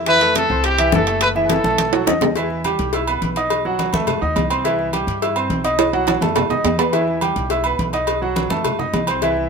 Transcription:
Already playing: upright bass F2
0.06 grand piano E3 E4 E5, trumpet B4, high bongo, high conga, high timbale
0.21 grand piano A3 A4 A5, high bongo, high conga, high timbale
0.35 trumpet A4, high bongo, high conga, high timbale
0.50 upright bass C2, grand piano C4 C5 C6, high conga
0.64 trumpet G4, high bongo, high conga, high timbale
0.78 grand piano E3 E4 E5, high bongo, high conga, high timbale
0.92 upright bass F#1, trumpet A4, high bongo, low bongo, high conga
1.07 grand piano A3 A4 A5, high bongo, high timbale
1.21 trumpet B4, high bongo, high conga, high timbale
1.35 grand piano E3 E4 E5, trumpet A4, high bongo, high conga
1.49 high bongo, high conga, high timbale
1.64 upright bass B1, grand piano A3 A4 A5, high conga
1.78 high conga, high timbale
1.93 grand piano F#3 F#4 F#5, high timbale
2.07 upright bass E2, grand piano D#4 D#5 D#6, low bongo, high timbale
2.21 low bongo, low conga, low timbale
2.36 grand piano E3 E4 E5, cowbell, high conga, low agogo
2.50 high conga
2.64 grand piano G3 G4 G5, cowbell, high conga, low agogo
2.79 upright bass B1, cowbell, high conga
2.93 grand piano E4 E5 E6, cowbell, high conga, low agogo
3.07 grand piano B3 B4 B5, high conga, low agogo
3.22 upright bass B1, cowbell, high conga
3.36 grand piano D#4 D#5 D#6, cowbell, high conga, low agogo
3.50 cowbell, high conga, low agogo
3.65 grand piano F#3 F#4 F#5, high conga
3.79 cowbell, high conga, low agogo
3.93 upright bass F#2, grand piano A3 A4 A5, high conga, low agogo
4.07 cowbell, high conga, low conga, low agogo
4.21 upright bass D#2, grand piano D#4 D#5 D#6, high conga
4.36 upright bass C2, cowbell, high conga, low timbale, low agogo
4.50 grand piano C4 C5 C6, cowbell, high conga, low agogo
4.64 grand piano E3 E4 E5, cowbell, high conga, low agogo
4.79 high conga
4.93 grand piano G3 G4 G5, cowbell, high conga, low agogo
5.07 upright bass G2, cowbell, high conga
5.22 grand piano E4 E5 E6, cowbell, high conga, low agogo
5.36 grand piano C4 C5 C6, high conga, low agogo
5.50 upright bass B1, cowbell, high conga
5.64 grand piano D#4 D#5 D#6, cowbell, high conga, low agogo
5.79 cowbell, high conga, high timbale, low agogo
5.93 grand piano F#3 F#4 F#5, high conga, high timbale
6.07 cowbell, high conga, high timbale, low agogo
6.21 upright bass F#2, grand piano A3 A4 A5, high conga, low timbale, low agogo
6.36 cowbell, high conga, low conga, low timbale, low agogo
6.50 upright bass F#2, grand piano D#4 D#5 D#6, high conga, low conga, low timbale
6.64 upright bass E2, cowbell, high conga, low timbale, low agogo
6.78 grand piano B3 B4 B5, cowbell, high conga, low timbale, low agogo
6.92 grand piano E3 E4 E5, cowbell, high conga, low agogo
7.08 high conga
7.21 grand piano G3 G4 G5, cowbell, high conga, low agogo
7.36 upright bass B1, cowbell, high conga
7.50 grand piano E4 E5 E6, cowbell, high conga, low agogo
7.64 grand piano B3 B4 B5, high conga, low agogo
7.79 upright bass B1, cowbell, high conga
7.93 grand piano D#4 D#5 D#6, cowbell, high conga, low agogo
8.07 cowbell, high conga, low agogo
8.22 grand piano F#3 F#4 F#5, high conga
8.36 cowbell, high conga, low agogo
8.50 upright bass F#2, grand piano A3 A4 A5, high conga, low agogo
8.65 cowbell, high conga, low conga, low agogo
8.79 grand piano D#4 D#5 D#6, high conga, low conga
8.93 upright bass C2, cowbell, high conga, low timbale, low agogo
9.07 grand piano C4 C5 C6, cowbell, high conga, low agogo
9.22 grand piano E3 E4 E5, cowbell, high conga, low agogo
9.37 high conga

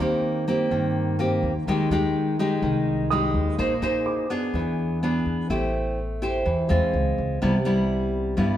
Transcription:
Already playing: nylon-string guitar D#3, grand piano C6 D6
0.00 upright bass D#2, nylon-string guitar A#3 C4 G4
0.48 nylon-string guitar A#3 C4 G4
0.71 upright bass G2, nylon-string guitar D#3
1.19 nylon-string guitar A#3 C4 G4
1.43 upright bass D#2
1.67 upright bass D#2, nylon-string guitar D#3 G#3 D#4 G4
1.90 upright bass D#2, nylon-string guitar G#3 D#4 G4
2.39 nylon-string guitar G#3 D#4 G4
2.62 upright bass C2, nylon-string guitar D#3
3.10 nylon-string guitar G#3 D#4 G4, grand piano D#6
3.34 upright bass D#2
3.58 upright bass A#1, nylon-string guitar A#3 D#4 G#4 C5
3.82 upright bass A#1, nylon-string guitar D#4 G#4 C5
4.06 grand piano D6
4.30 nylon-string guitar B3 D4 G#4
4.54 upright bass E2, nylon-string guitar E3
5.03 nylon-string guitar B3 D4 G#4
5.26 upright bass E2
5.50 upright bass A1, nylon-string guitar A3 E4 G4 C5
6.22 nylon-string guitar E4 G4 C5
6.46 upright bass E2, nylon-string guitar E3
6.69 upright bass E2, nylon-string guitar G#3 C4 F4
6.93 upright bass C#2
7.18 upright bass C#2
7.42 upright bass C2, nylon-string guitar C3 G3 B3 E4
7.65 nylon-string guitar G3 B3 E4
8.37 nylon-string guitar G2 G3 B3 E4, upright bass G2

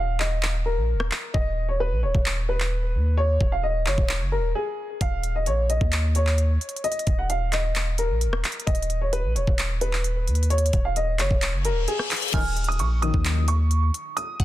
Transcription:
Already playing: 808-style bass D#1, grand piano F5
0.20 grand piano D#5, clap
0.43 clap
0.66 grand piano A#4
0.77 808-style bass A#1
0.94 808-style bass D#1
1.00 cross-stick
1.11 clap
1.34 808-style bass D#1, grand piano D#5, kick
1.69 grand piano C#5
1.80 grand piano B4
1.92 808-style bass A#1
2.03 808-style bass D#1, grand piano C#5
2.15 808-style bass D#1, kick
2.26 clap
2.49 grand piano B4
2.60 clap
2.95 808-style bass D#2
3.17 grand piano C#5
3.41 808-style bass D#1, kick
3.52 grand piano F5
3.63 grand piano D#5
3.86 808-style bass F#1, grand piano C#5, clap
3.98 808-style bass D#1, kick
4.09 clap
4.21 808-style bass F#1
4.32 grand piano A#4
4.38 808-style bass D#1
4.55 grand piano G#4
5.01 808-style bass D#1, grand piano F5, kick, closed hi-hat
5.23 closed hi-hat
5.36 grand piano D#5
5.46 808-style bass A#1, grand piano C#5, closed hi-hat
5.70 grand piano D#5, closed hi-hat
5.81 808-style bass D#2, kick
5.92 clap, closed hi-hat
6.15 grand piano C#5, closed hi-hat
6.27 clap
6.38 closed hi-hat
6.61 closed hi-hat
6.69 closed hi-hat
6.76 closed hi-hat
6.84 grand piano D#5, closed hi-hat
6.92 closed hi-hat
6.99 closed hi-hat
7.07 808-style bass D#1, kick, closed hi-hat
7.19 grand piano F#5
7.30 grand piano F5, closed hi-hat
7.52 grand piano D#5, clap, closed hi-hat
7.76 clap, closed hi-hat
7.98 grand piano A#4, closed hi-hat
8.10 808-style bass A#1
8.21 closed hi-hat
8.27 808-style bass D#1
8.33 cross-stick
8.44 clap, closed hi-hat
8.52 closed hi-hat
8.60 closed hi-hat
8.67 808-style bass D#1, grand piano D#5, kick, closed hi-hat
8.75 closed hi-hat
8.82 closed hi-hat
8.90 closed hi-hat
9.01 grand piano C#5
9.13 grand piano B4, closed hi-hat
9.24 808-style bass A#1
9.35 808-style bass D#1, grand piano C#5, closed hi-hat
9.47 808-style bass D#1, kick
9.59 clap, closed hi-hat
9.81 grand piano B4, closed hi-hat
9.93 clap
10.04 closed hi-hat
10.27 808-style bass D#2, closed hi-hat
10.35 closed hi-hat
10.43 closed hi-hat
10.50 grand piano C#5, closed hi-hat
10.58 closed hi-hat
10.66 closed hi-hat
10.73 808-style bass D#1, kick, closed hi-hat
10.85 grand piano F5
10.96 grand piano D#5, closed hi-hat
11.19 808-style bass F#1, grand piano C#5, clap, closed hi-hat
11.31 808-style bass D#1, kick
11.42 clap, closed hi-hat, reverse cymbal
11.53 808-style bass F#1
11.65 grand piano A#4, closed hi-hat
11.71 808-style bass D#1
11.88 grand piano G#4, closed hi-hat
11.99 cross-stick
12.11 clap, closed hi-hat, open hi-hat
12.16 closed hi-hat
12.22 closed hi-hat
12.28 closed hi-hat
12.34 808-style bass D#1, brass ensemble A#1 F#2 D#3, synth pluck G#5, grand piano F6, kick, closed hi-hat, crash
12.57 closed hi-hat
12.64 closed hi-hat
12.68 grand piano D#6, closed hi-hat
12.79 808-style bass A#1, grand piano C#6, closed hi-hat
13.02 brass ensemble A#1 F#2 D#3, grand piano D#6, closed hi-hat
13.14 808-style bass D#2, kick
13.25 clap, closed hi-hat
13.48 grand piano C#6, closed hi-hat
13.71 closed hi-hat
13.94 closed hi-hat
14.17 grand piano D#6, closed hi-hat
14.40 808-style bass D#1, synth pluck F#5, kick, closed hi-hat

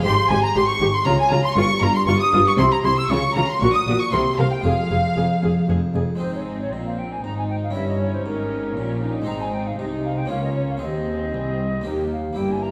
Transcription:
0.00 harpsichord G#3 G4 C5, violin section C6
0.04 double bass section G#1, cello section G#2, harpsichord G#2, viola section G4, flute C6, violin section C6
0.29 double bass section G#1, cello section G#2, harpsichord G#2, viola section G4, violin section G#5, flute G#5
0.43 violin section A#5, flute A#5
0.55 double bass section G#1, cello section G#2, harpsichord G#2, viola section G4, flute C6, violin section C6
0.68 flute C#6, violin section C#6
0.81 double bass section G#1, cello section G#2, harpsichord G#2, viola section G4
0.94 flute C6, violin section C6
1.02 double bass section C#2, cello section C#3, harpsichord G#3 F4 C#5, viola section F4, violin section A#5, flute A#5
1.07 harpsichord C#3, violin section A#5
1.19 violin section G#5, flute G#5
1.30 double bass section C#2, cello section C#3, harpsichord C#3, viola section F4, violin section A#5, flute A#5
1.43 violin section C6, flute C6
1.54 double bass section G1, cello section G2, harpsichord G2 F4 A#4, viola section F4, violin section C#6, flute C#6
1.81 double bass section G1, cello section G2, harpsichord G2, viola section F4, violin section A#5, flute A#5
1.95 violin section C6, flute C6
2.06 double bass section G1, cello section G2, harpsichord G2, viola section F4, violin section C#6, flute C#6
2.19 violin section D#6, flute D#6
2.33 double bass section G1, cello section G2, harpsichord G2, viola section F4
2.46 violin section C#6, flute C#6
2.56 double bass section C2, cello section C3, harpsichord C3 E4 A#4, viola section E4, violin section C6, flute C6
2.71 violin section A#5, flute A#5
2.82 double bass section C2, cello section C3, harpsichord C3, viola section E4, violin section C6, flute C6
2.97 violin section E6, flute E6
3.08 double bass section C#2, cello section C#3, harpsichord C#3 F4 G#4, viola section F4, violin section C#6, flute C#6
3.34 double bass section C#2, cello section C#3, harpsichord C#3, viola section F4, violin section A#5, flute A#5
3.47 violin section C6, flute C6
3.57 harpsichord A#3 F#4 A#4, violin section C#6
3.61 double bass section A#1, harpsichord A#2, cello section A#2, viola section F#4, flute C#6
3.73 violin section D#6, flute D#6
3.87 double bass section A#1, cello section A#2, harpsichord A#2, viola section F#4
3.99 violin section C#6, flute C#6
4.09 cello section C3, harpsichord A#3 E4 G4, viola section A#4, violin section C6, flute C6
4.13 double bass section C2, harpsichord C3
4.38 double bass section C2, cello section C3, harpsichord C3, viola section A#4, violin section F5, flute F5
4.51 violin section G5, flute G5
4.60 harpsichord G#3 F4 G#4, violin section F5
4.65 double bass section F1, cello section F2, harpsichord F2, viola section G#4, flute F5
4.91 double bass section F1, cello section F2, harpsichord F2, viola section G#4
5.17 double bass section F1, cello section F2, harpsichord F2, viola section G#4
5.43 double bass section F1, cello section F2, harpsichord F2, viola section G#4
5.69 double bass section F1, cello section F2, harpsichord F2, viola section G#4
5.95 double bass section F1, cello section F2, harpsichord F2, viola section G#4
6.15 harpsichord G#3 C4 D#4
6.20 double bass section G#1, cello section G#2, harpsichord G#2 G#4, viola section C4, violin section D#4 G#4, flute C5
6.35 flute C#5
6.47 flute D#5
6.60 flute C#5
6.72 double bass section A#1, cello section A#2, harpsichord A#2, violin section C4 D#4, flute D#5
6.85 flute F5
6.98 flute G5
7.11 flute G#5
7.24 double bass section G#1, cello section G#2, harpsichord G#2, viola section D#4, flute A#5
7.37 flute G#5
7.49 flute G5
7.63 flute F5
7.71 double bass section G1, cello section G2, harpsichord C#4 E4 A#4, viola section C#4, flute E5
7.75 harpsichord G2, violin section E4
7.88 flute D#5
8.00 flute C#5
8.14 flute C5
8.25 double bass section G#1, cello section G#2, harpsichord G#2, violin section D#4 G4, flute A#4
8.76 double bass section A#1, cello section A#2, harpsichord A#2, violin section C#4 G4, viola section C#4
9.02 viola section D#4
9.22 harpsichord G#3 C4 D#4
9.26 double bass section G#1, cello section G#2, harpsichord G#2 G#4, violin section C4 G#4, flute A#5
9.41 flute G#5
9.53 flute G5
9.66 flute F5
9.78 double bass section C2, cello section C3, harpsichord C3, violin section C4 G#4, viola section D#4, flute D#5
10.04 flute F5
10.17 flute G5
10.26 harpsichord A#3 C#4 F4, flute F5
10.30 cello section C#2, double bass section C#2, harpsichord C#2, violin section A#3 F4, viola section C#4
10.43 flute D#5
10.56 flute C#5
10.70 flute F5
10.77 harpsichord C4 G#4, violin section C4
10.82 cello section D#2, double bass section D#2, harpsichord D#2, viola section C4, violin section G#4, flute D#5
11.34 cello section C2, double bass section C2, harpsichord C2
11.81 harpsichord A#3 D#4 G4
11.86 double bass section D#2, cello section D#2, harpsichord D#2, viola section A#3, violin section D#4 G4
12.12 flute F5
12.33 harpsichord A#3 E4 G4, flute G5
12.37 double bass section G1, cello section G2, harpsichord G2, viola section A#3, violin section E4 G4
12.51 flute G#5
12.62 flute A#5

